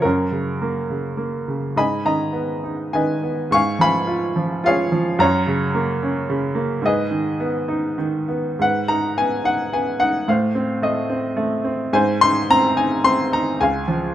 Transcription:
0.02 F#2 C#4 A#4
0.32 C#3
0.62 A#3
0.90 C#3
1.17 A#3
1.48 C#3
1.76 G#2 D#5 G#5 B5
2.05 D#3 D#5 A#5
2.33 B3
2.64 D#4
2.93 D#3 B4 D#5 G#5
3.23 B3
3.51 G#2 F5 G#5 C#6
3.79 F3 F5 G#5 B5
4.07 F4
4.36 F3
4.64 F4 G#4 C#5 F5
4.92 F3
5.19 F#2 C#5 A#5
5.47 C#3
5.75 A#3
6.03 C#4
6.30 C#3
6.55 A#3
6.82 G#2 D#5
6.86 G#4 B4
7.11 D#3
7.40 B3
7.68 D#4
7.98 D#3
8.28 B3
8.59 G#2 B4 F#5
8.88 D#4 A#5
9.18 B3 G#5
9.44 D#4 F#5
9.72 B3 G#5
10.00 D#4 F#5
10.28 A2 C5 F5
10.55 C4
10.82 A3 D#5
11.10 C4
11.37 A3
11.64 C4
11.93 G#2 C5 G#5
12.21 D#4 C6
12.50 C4 A#5
12.76 D#4 G#5
13.04 C4 C6
13.32 D#4 A#5
13.61 C#2 F5 G#5
13.88 F3

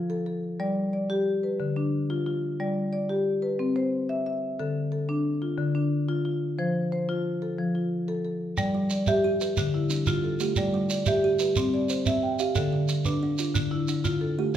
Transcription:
Already playing: F4
0.10 A4
0.26 A4
0.60 G3 D5
0.93 D5
1.10 G4
1.43 B4
1.60 D3
1.76 D4
2.10 F4
2.26 F4
2.60 G3 D5
2.93 D5
3.09 G4
3.42 B4
3.59 C4
3.76 C5
4.09 E5
4.26 E5
4.60 D3 A4
4.92 A4
5.09 D4
5.42 F4
5.58 D3
5.75 D4
6.09 F4
6.25 F4
6.59 F3 C5
6.92 C5
7.09 F4
7.42 A4
7.58 F3
7.75 F4
8.08 A4
8.25 A4
8.57 G3 D5, shekere
8.74 G3
8.90 D5, shekere
9.07 G4 E5, shekere
9.24 G4
9.41 G4 B4, shekere
9.57 D3 G3, shekere
9.74 E4
9.90 D4, shekere
10.07 D3 F4, shekere
10.24 A4
10.40 A3 G4, shekere
10.56 G3 D5, shekere
10.74 G3
10.90 D5, shekere
11.06 G4 E5, shekere
11.24 G4
11.39 G4 B4, shekere
11.56 G3 C4, shekere
11.74 D5
11.89 C5, shekere
12.06 C4 E5, shekere
12.23 G5
12.39 G4 F5, shekere
12.55 D3 A4 G5, shekere
12.73 D3
12.88 shekere
13.05 D4 B4, shekere
13.23 D4
13.38 D4 F4, shekere
13.55 D3, shekere
13.71 E4
13.88 D4, shekere
14.04 D3 F4, shekere
14.21 A4
14.39 A3 G4

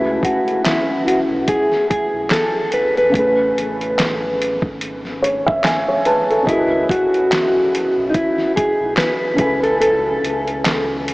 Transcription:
Already playing: C#2 C#3 A3 E4 F#4 B4
0.23 F#4, kick, closed hi-hat
0.48 closed hi-hat
0.65 E4, snare, clap, closed hi-hat
1.08 F#4, closed hi-hat
1.30 B1
1.48 G#4, kick, closed hi-hat
1.72 snare
1.90 G#4, kick, closed hi-hat
2.13 B1
2.30 A4, snare, clap, closed hi-hat
2.72 B4, closed hi-hat
2.96 E1 B4, closed hi-hat
3.09 C#3 A3
3.14 A1 C#4 G#4, kick, closed hi-hat
3.19 B4
3.56 A1, closed hi-hat
3.81 closed hi-hat
3.99 snare, clap, closed hi-hat
4.42 closed hi-hat
4.62 G#1, kick
4.81 closed hi-hat
5.05 snare
5.22 C#5, closed hi-hat
5.46 G#1 E5, kick
5.64 E5 G#5, snare, clap, closed hi-hat
5.88 C#5
6.05 B4 A5, closed hi-hat
6.30 A4, closed hi-hat
6.43 C#3 C#4 D#5
6.47 C#2 E4 F#4 G#4, kick, closed hi-hat
6.52 A#4
6.59 B4
6.89 F#4, kick, closed hi-hat
7.14 closed hi-hat
7.32 snare, clap, closed hi-hat
7.75 closed hi-hat
7.97 B1
8.10 D#4
8.14 E4, kick, closed hi-hat
8.38 snare
8.56 G#4, kick, closed hi-hat
8.80 B1
8.97 B4, snare, clap, closed hi-hat
9.34 C#3 C#4
9.38 C#2 E4 B4 G#5, kick, closed hi-hat
9.43 A4
9.63 A4, closed hi-hat
9.81 A4, closed hi-hat
10.23 C#2, closed hi-hat
10.48 closed hi-hat
10.65 snare, clap, closed hi-hat
11.08 closed hi-hat

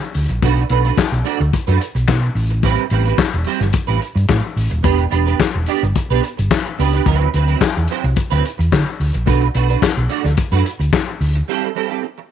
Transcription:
0.01 muted clean electric guitar stroke, closed hi-hat
0.14 D2, open hi-hat
0.29 A#1, muted clean electric guitar stroke, closed hi-hat
0.42 B1 A3 D4 F#4 B4, kick, closed hi-hat
0.57 closed hi-hat
0.70 B1 A3 D4 F#4 B4, closed hi-hat
0.85 A3 D4 F#4 B4, closed hi-hat
0.97 muted clean electric guitar stroke, kick, snare, clap
1.11 B1, muted clean electric guitar stroke, closed hi-hat
1.25 A3 D4 F#4 D5, closed hi-hat
1.40 D2, muted clean electric guitar stroke, closed hi-hat
1.52 muted clean electric guitar stroke, kick, closed hi-hat
1.67 F#2 A3 D4 F#4 B4, closed hi-hat
1.81 muted clean electric guitar stroke, closed hi-hat
1.95 B1, muted clean electric guitar stroke, closed hi-hat
2.07 B2, muted clean electric guitar stroke, kick, snare, clap
2.23 muted clean electric guitar stroke
2.35 A1, open hi-hat
2.50 muted clean electric guitar stroke, closed hi-hat
2.63 G3 C4 E4 B4, kick, closed hi-hat
2.77 closed hi-hat
2.90 A1 G3 C4 E4 B4, closed hi-hat
3.05 G3 C4 E4 B4, closed hi-hat
3.18 kick, snare, clap
3.34 E1, muted clean electric guitar stroke, closed hi-hat
3.44 G3 C4 E4 C5, open hi-hat
3.60 G1, muted clean electric guitar stroke, snare, closed hi-hat
3.72 muted clean electric guitar stroke, kick, closed hi-hat
3.87 A1 G3 C4 E4 B4
4.00 muted clean electric guitar stroke, closed hi-hat
4.15 G2, muted clean electric guitar stroke, closed hi-hat
4.28 A2, muted clean electric guitar stroke, kick, snare, clap
4.42 muted clean electric guitar stroke
4.56 A1, open hi-hat
4.70 D#1, muted clean electric guitar stroke, closed hi-hat
4.83 E1 B3 D4 G4 B4, kick, closed hi-hat
4.99 closed hi-hat
5.10 E1 B3 D4 G4 B4, closed hi-hat
5.26 B3 D4 G4 B4, closed hi-hat
5.39 muted clean electric guitar stroke, kick, snare, clap
5.54 E1, muted clean electric guitar stroke
5.66 B3 D4 G4 D5, closed hi-hat
5.83 G1, muted clean electric guitar stroke, closed hi-hat
5.95 muted clean electric guitar stroke, kick, closed hi-hat
6.10 B1 B3 D4 G4 B4
6.23 muted clean electric guitar stroke, closed hi-hat
6.37 G1, muted clean electric guitar stroke, closed hi-hat
6.50 muted clean electric guitar stroke, kick, snare, clap
6.66 muted clean electric guitar stroke
6.79 C#2 B3 D4 G4 B4, open hi-hat
6.93 B3 D4 G4 B4, closed hi-hat
7.06 D2 F#3 C4 E4 B4, kick, closed hi-hat
7.34 D2 F#3 C4 E4 B4, closed hi-hat
7.48 F#3 C4 E4 B4, closed hi-hat
7.61 muted clean electric guitar stroke, kick, snare, clap
7.77 E2, muted clean electric guitar stroke
7.88 F#3 C4 E4 C5, closed hi-hat
8.04 C2, muted clean electric guitar stroke, closed hi-hat
8.16 muted clean electric guitar stroke, kick, closed hi-hat
8.30 D2 F#3 C4 E4 B4, closed hi-hat
8.44 muted clean electric guitar stroke, closed hi-hat
8.58 E2, muted clean electric guitar stroke, closed hi-hat
8.72 D3, muted clean electric guitar stroke, kick, snare, clap
8.86 muted clean electric guitar stroke
9.00 D2, open hi-hat
9.13 A#1, muted clean electric guitar stroke, closed hi-hat
9.26 B1 A3 D4 F#4 B4, kick, closed hi-hat
9.41 closed hi-hat
9.54 B1 A3 D4 F#4 B4, closed hi-hat
9.69 A3 D4 F#4 B4, closed hi-hat
9.82 muted clean electric guitar stroke, kick, snare, clap
9.97 B1, muted clean electric guitar stroke
10.09 A3 D4 F#4 D5, closed hi-hat
10.24 D2, muted clean electric guitar stroke, snare, closed hi-hat
10.37 muted clean electric guitar stroke, kick, closed hi-hat
10.52 F#2 A3 D4 F#4 B4, closed hi-hat
10.65 muted clean electric guitar stroke, closed hi-hat
10.79 D2, muted clean electric guitar stroke, closed hi-hat
10.93 muted clean electric guitar stroke, kick, snare, clap
11.08 muted clean electric guitar stroke
11.21 D2, open hi-hat
11.35 muted clean electric guitar stroke, closed hi-hat
11.48 G3 C4 E4 A4
11.75 G3 C4 E4 A4
11.90 G3 C4 E4 A4
12.03 muted clean electric guitar stroke
12.18 muted clean electric guitar stroke

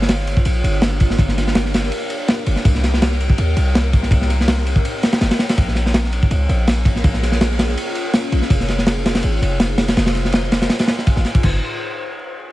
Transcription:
Already playing: G1 D4 F4 G4 A#4
0.02 snare
0.09 snare, ride
0.19 snare
0.27 ride
0.37 kick
0.45 A#1, ride
0.64 G1, ride
0.82 snare, ride
1.00 kick, ride
1.10 snare
1.19 G1, kick, ride
1.28 snare
1.37 snare, ride
1.47 snare
1.55 snare, ride
1.65 snare
1.74 snare, ride
1.83 snare
1.92 ride
2.10 ride
2.28 snare, ride
2.46 G1, ride
2.56 snare
2.65 C2 C4 D#4, kick, ride
2.75 snare
2.83 snare, ride
2.94 snare
3.02 snare, ride
3.11 snare
3.20 ride
3.30 kick
3.38 D#2, ride
3.56 C2, ride
3.75 snare, ride
3.93 kick, ride
4.03 snare
4.11 C2, kick, ride
4.21 snare
4.29 snare, ride
4.41 snare
4.48 snare, ride
4.57 snare
4.67 ride
4.76 kick
4.85 ride
5.03 snare, ride
5.12 snare, ride
5.21 G1, snare, ride
5.31 snare, ride
5.39 snare, ride
5.49 snare, ride
5.58 A#1 C#4 F4 G#4 A#4, kick, ride
5.68 snare
5.75 snare, ride
5.86 snare
5.94 snare, ride
6.04 snare
6.13 ride
6.23 kick
6.31 C#2, ride
6.49 A#1, ride
6.67 snare, ride
6.85 kick, ride
6.96 snare
7.04 A#1, kick, ride
7.14 snare
7.23 snare, ride
7.32 snare
7.41 snare, ride
7.51 snare
7.59 snare, ride
7.68 snare
7.77 ride
7.95 ride
8.14 snare, ride
8.32 A#1, ride
8.42 snare
8.50 F1 D#4 C5, kick, ride
8.60 snare
8.68 snare, ride
8.78 snare
8.87 snare, ride
8.97 snare
9.05 snare, ride
9.15 snare, ride
9.23 G#1, ride
9.42 F1, ride
9.60 snare, ride
9.78 snare, ride
9.88 snare, ride
9.97 F1, snare, ride
10.06 snare, ride
10.15 snare, ride
10.25 snare
10.32 snare, ride
10.43 snare
10.52 snare, ride
10.62 snare, ride
10.70 snare, ride
10.79 snare, ride
10.87 snare, ride
10.98 snare
11.07 kick, ride
11.16 G#1, snare
11.24 snare, ride
11.35 kick, ride
11.43 G1, kick, crash

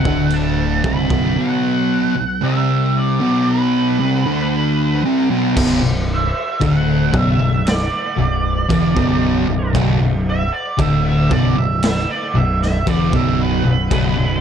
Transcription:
Already playing: F#5
0.04 D1 D2 D3, kick
0.30 A5, crash
0.84 C1 C2 C3 B5, kick
1.10 B0 B1 B2, kick
1.37 B1 B2 F#5
2.16 B1
2.43 C2 C3 E5
2.98 D5
3.20 B1 B2
3.50 B4
4.00 C2 C3
4.26 D2 D3
5.04 C2 C3
5.30 B1 B2
5.56 B0 B1 B2, kick, crash
5.82 B0 B1
6.14 E5
6.60 D1 D2 D3, kick, crash
6.66 F#5
7.12 B0 B1 B2 E5, kick
7.39 B0 B1
7.67 D5, snare, crash
8.17 B0 B1
8.69 E1 E2 E3, kick, crash
8.95 B0 B1 B2, kick
9.47 B0 B1
9.73 B0 B1 B2, kick, crash
9.99 B0 B1
10.30 E5
10.53 D5
10.77 D1 D2 D3 E5, kick, crash
11.06 E5
11.30 B0 B1 B2 D5, kick
11.56 B0 B1 E5
11.83 E5, snare, crash
12.11 D5
12.35 B0 B1 E5
12.62 E5, snare
12.87 E1 E2 E3 D5, kick, crash
13.12 B0 B1 B2 E5, kick
13.41 B4
13.64 B0 B1
13.91 B0 B1 B2, kick, crash
14.16 B0 B1

